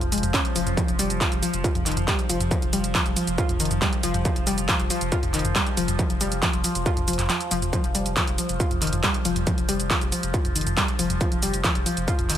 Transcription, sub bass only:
0.01 F1
0.12 F1
0.23 F1
0.56 F1
0.67 F1
0.88 F1
0.99 F1
1.10 F1
1.32 F1
1.54 F1
1.75 F1
1.86 F1
1.97 F1
2.29 F1
2.41 F1
2.62 F1
2.73 F1
2.84 F1
3.06 F1
3.27 F1
3.49 F1
3.60 F1
3.71 F1
4.03 F1
4.14 F1
4.36 F1
4.47 F1
4.58 F1
4.79 F1
5.01 F1
5.23 F1
5.34 F1
5.45 F1
5.77 F1
5.88 F1
6.10 F1
6.21 F1
6.32 F1
6.54 F1
6.75 F1
6.97 F1
7.08 F1
7.19 F1
7.51 F1
7.62 F1
7.84 F1
7.95 F1
8.06 F1
8.27 F1
8.49 F1
8.71 F1
8.82 F1
8.93 F1
9.25 F1
9.36 F1
9.58 F1
9.69 F1
9.80 F1
10.01 F1
10.23 F1
10.45 F1
10.56 F1
10.67 F1
10.99 F1
11.10 F1
11.32 F1
11.42 F1
11.53 F1
11.75 F1
11.97 F1
12.19 F1
12.30 F1

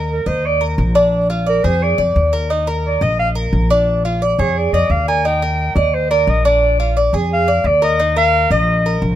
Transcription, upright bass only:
Already playing: D#2
0.26 D#2
0.78 A#1
1.64 F2
1.98 F2
2.16 D#2
3.01 A#1
3.53 A#1
4.39 F2
4.73 F2
4.90 D#2
5.76 D#2
6.27 A#1
7.13 F2
7.64 D#2
8.50 A#1
9.02 A#1

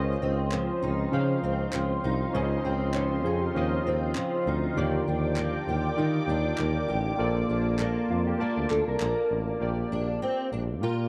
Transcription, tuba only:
Already playing: C#2
0.22 C#2
0.82 C#2
1.12 C#3
1.43 C#2
1.74 C#2
2.04 C2
2.34 C#2
2.64 C#2
3.25 F2
3.55 D#2
3.85 D#2
4.46 D2
4.76 D#2
5.07 D#2
5.67 D#2
5.97 D#3
6.27 D#2
6.58 D#2
6.89 A1
7.19 A#1
7.49 A#1
8.10 F2
8.57 D2
8.71 D2
8.87 C2
9.00 A#1
9.31 A1
9.61 A#1
9.91 A#1
10.52 A#1
10.82 A#2

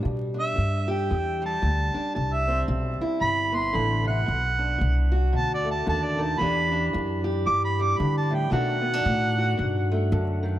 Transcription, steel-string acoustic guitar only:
Already playing: G3 G4
0.03 E2
0.34 D4
0.56 E2
0.88 G4
1.10 E2
1.42 G3
1.62 E2
1.94 D4
2.15 C3
2.48 C4
2.68 C3
3.01 E4
3.20 C3
3.52 B3
3.73 D3
4.04 C3
4.26 B2
4.59 D4
4.78 B2
5.12 F#4
5.33 B2
5.65 A3
5.86 D3
6.18 D#3
6.38 E2 E3 D4 G4
6.72 D4
6.93 E2
7.24 G4
7.46 E2
7.79 G3
7.99 G2
8.30 A2
8.50 B2 D#3 A3 D4 F#4
8.81 B3
8.93 D4
9.04 B2
9.38 F#4
9.57 B2
9.92 A3
10.12 D3
10.43 D#3

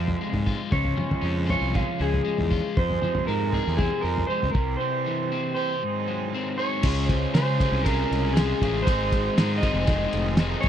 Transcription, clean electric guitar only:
Already playing: F5
0.72 C#5
1.50 C#5
1.76 F5
2.02 G#4
2.77 C5
3.27 A#4
3.77 G#4
4.01 A#4
4.27 C5
4.51 A#4
4.77 C5
5.54 C5
6.58 C#5
7.08 C5
7.34 C5
7.84 A#4
8.33 G#4
8.82 C5
9.58 D#5
10.61 C#5

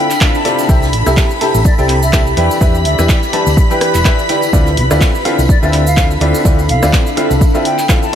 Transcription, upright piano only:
0.21 D3 C4 E4 F4 A4 F5
0.45 C3 C4 E4 F4 A4 D5
0.69 C3 C4 E4 G4 A4 E5
1.06 C3 C4 E4 G4 A4 E5
1.41 C3 C4 E4 G4 A4 A5
1.78 C3 C4 E4 G4 A4 G5
2.13 C4 E4 G4 A4 A5
2.37 E3 D4 E4 G4 B4 E5
2.61 E3 D4 E4 G4 B4 E5
2.99 E3 D4 E4 G4 B4 E5
3.33 E3 D4 E4 G4 B4 A5
3.71 E3 D4 E4 G4 B4 G5
4.05 E3 D4 E4 G4 B4 E5
4.29 D3 D4 E4 G4 B4 G5
4.53 D3 C4 E4 F4 A4 D5
4.91 D3 C4 E4 F4 A4 D5
5.25 D3 C4 E4 F4 A4 F5
5.63 D3 C4 E4 F4 A4 E5
5.97 D3 C4 E4 F4 A4 F5
6.21 D3 C4 E4 F4 A4 D5
6.45 D3 C4 E4 F4 A4 D5
6.83 D3 C4 E4 F4 A4 D5
7.17 D3 C4 E4 F4 A4 F5
7.54 D3 C4 E4 F4 A4 E5
7.89 D3 C4 E4 F4 A4 F5

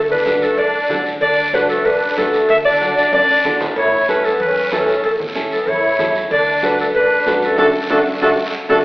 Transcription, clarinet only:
0.11 B4
0.43 A4
0.58 D5
1.22 D5
1.54 B4
1.69 A4
1.85 B4
2.17 A4
2.50 E5
2.65 D5
2.97 D5
3.14 D5
3.77 C#5
4.09 B4
4.25 A4
4.41 B4
4.73 A4
5.05 A4
5.52 A4
5.68 C#5
6.32 D5
6.65 B4
6.80 A4
6.96 B4
7.36 B4
7.45 A4
7.58 A4
7.90 A4
8.22 A4
8.70 A4

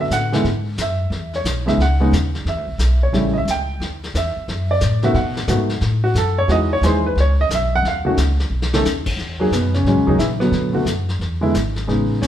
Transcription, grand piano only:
Already playing: D3 A3 B3 F#4
0.01 E5
0.13 F#5
0.32 D3 G#3 B3 E4
0.81 E5
1.36 C#5
1.66 C#3 G#3 B3 D#4 E5
1.82 F#5
2.00 C#3 G#3 B3 D#4
2.49 E5
3.03 C#5
3.13 C#3 G3 A3 E4
3.38 E5
3.51 G5
4.17 E5
4.71 D5
5.03 D#3 A3 B3 F#4 E5
5.15 F#5
5.48 D#3 A3 B3 F#4
6.04 F#4
6.18 A4
6.38 C#5
6.48 E3 G#3 D#4 F#4 D#5
6.73 C#5
6.83 E3 G#3 D#4 G#4 C5
7.06 B4
7.20 C#5
7.41 D#5
7.55 E5
7.75 F#5
7.88 F5
8.05 D#3 A3 C#4 F#4
8.74 D#3 A3 C#4 A4
9.40 F#3 A#3 D#4 G#4
9.53 B2 B3
9.75 C#3 C#4
9.87 C#3 F#3 G#3 C#4
10.07 D#3 F#3 A#3 D#4 G#4
10.19 E3 E4
10.40 B2 D3 F#3 B3
10.73 D3 A3 B3 F#4
11.41 D3 G#3 B3 E4
11.87 C#3 G#3 B3 D#4
12.22 C#3 C#4

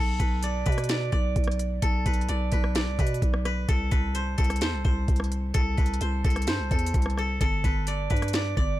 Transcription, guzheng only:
Already playing: A4 C5
0.19 B4
0.43 D5
0.66 B4
0.89 D5
1.12 D5
1.82 A4
2.06 B4
2.29 D5
2.53 B4
2.75 D5
2.99 B4
3.45 B4
3.69 A4
3.91 B4
4.15 C5
4.38 A4
4.62 C5
4.85 C5
5.54 A4
5.77 B4
6.01 C5
6.24 A4
6.48 C5
6.71 A4
7.18 A4
7.41 A4
7.64 B4
7.88 D5
8.10 B4
8.35 D5
8.57 D5

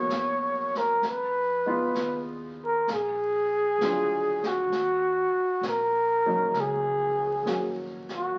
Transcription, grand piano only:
Already playing: G#3 A#3 B3 D#4 F#4
1.66 G#3 B3 D#4 F4
3.81 F#3 G#3 D4 F4
6.26 F#3 A#3 C#4 D#4
7.45 F#3 A#3 C#4 F#4

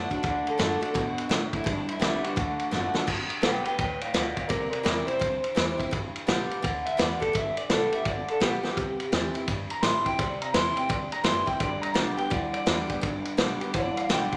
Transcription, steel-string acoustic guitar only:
Already playing: A2
0.10 D4 F#4
0.23 D3
0.58 D3 A3 D4 F#4
0.81 D4 F#4
0.94 B2
1.29 A2
1.64 G2
2.00 D3 G3 B3 G4
2.36 D3
2.71 D3 A3 D4 F#4
2.94 D4 F#4
3.07 G2
3.42 D3 G3 B3 G4
3.65 B3 G4
3.79 A2
4.14 B2
4.49 C3
4.83 E3 G3 C4 E4
5.07 C4 E4
5.20 G2
5.55 E3 G3 C4 E4
5.78 C4 E4
5.91 G2
6.27 D3 G3 B3 G4
6.62 D3
6.97 D3 G3 B3 G4
7.20 B3 G4
7.33 G2
7.70 D3 G3 B3 G4
8.06 D3
8.40 D3 G3 B3 G4
8.63 B3 G4
8.77 C3
9.12 E3 G3 C4 E4
9.34 C4 E4
9.49 G2
9.83 E3 G3 C4 E4
10.06 C4 E4
10.19 C3
10.54 E3 G3 C4 E4
10.77 C4 E4
10.89 G2
11.24 E3 G3 C4 E4
11.46 C4 E4
11.60 G2
11.94 D3 G3 B3 G4
12.17 B3 G4
12.30 D3
12.66 D3 G3 B3 G4
12.87 B3 G4
13.01 G2
13.37 D3 G3 B3 G4
13.60 B3 G4
13.74 D3
14.09 D3 G3 B3 G4

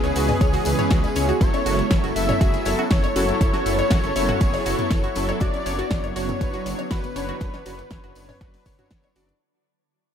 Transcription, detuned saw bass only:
0.04 C#2
0.16 C#2
0.41 C#2
0.66 C#2
0.91 C#2
1.16 C#2
1.41 F#1
1.66 F#1
1.91 F#1
2.04 F#1
2.16 F#1
2.41 F#1
2.66 F#1
2.91 F#1
3.16 F#1
3.41 F#1
3.66 F#1
3.91 F#1
4.04 F#1
4.16 F#1
4.41 F#1
4.66 F#1
4.91 F#1
5.16 F#1
5.41 F#1
5.66 F#1
5.91 F#1
6.04 F#1
6.16 F#1
6.41 F#1
6.66 F#1
6.91 F#1
7.16 F#1
7.41 F#1
7.66 F#1
7.91 F#1
8.04 F#1
8.16 F#1
8.41 F#1
8.66 F#1
8.91 F#1
9.16 F#1

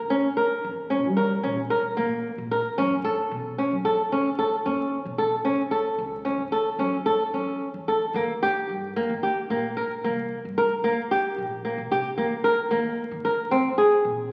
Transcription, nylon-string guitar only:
0.10 C#4
0.37 A#4
0.90 C#4
1.17 A#4
1.43 C#4
1.70 A#4
1.97 A#3
2.51 A#4
2.78 C#4
3.04 A4
3.58 C#4
3.85 A4
4.12 C#4
4.39 A4
4.66 C#4
5.18 A4
5.45 C#4
5.71 A4
6.25 C#4
6.52 A4
6.79 C#4
7.06 A4
7.34 C#4
7.88 A4
8.15 A#3
8.43 G4
8.96 A#3
9.23 G4
9.50 A#3
9.77 A#4
10.04 A#3
10.58 A#4
10.84 A#3
11.11 G4
11.65 A#3
11.91 G4
12.18 A#3
12.44 A#4
12.71 A#3
13.25 A#4
13.51 C4
13.78 G#4

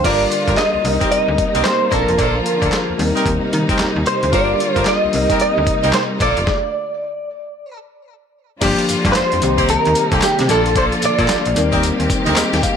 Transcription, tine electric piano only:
0.05 G3 D4 F4 A#4
0.85 G3 C4 D4 A#4
0.93 D#4
1.91 F3 A#3 C4 A5
1.99 D4
2.98 G3 C4 D#4 A#4
4.33 G3 D4 F4 A4
4.41 A#4
5.13 G3 C4 D#4 A#4
8.61 F3 A#3 D4 G4
9.42 D#3 A#3 C4 G4
10.48 F3 A#3 D4 A4
11.55 G3 C4 D#4 A#4
12.37 D#5
12.64 F5

